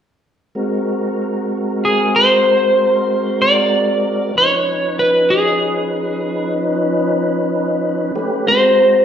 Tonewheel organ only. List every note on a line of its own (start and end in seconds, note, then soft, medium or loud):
0.55 4.32 G#3 medium
0.55 4.32 C4 medium
0.55 4.32 F#4 medium
0.55 4.32 A#4 medium
4.36 8.12 F3 medium
4.36 8.12 C#4 medium
4.36 8.12 D#4 medium
4.36 8.12 B4 medium
8.15 8.47 A3 medium
8.15 8.47 C#4 medium
8.15 8.47 G4 medium
8.15 8.47 B4 medium
8.47 9.05 G#3 medium
8.47 9.05 C4 medium
8.47 9.05 F#4 medium
8.47 9.05 A#5 medium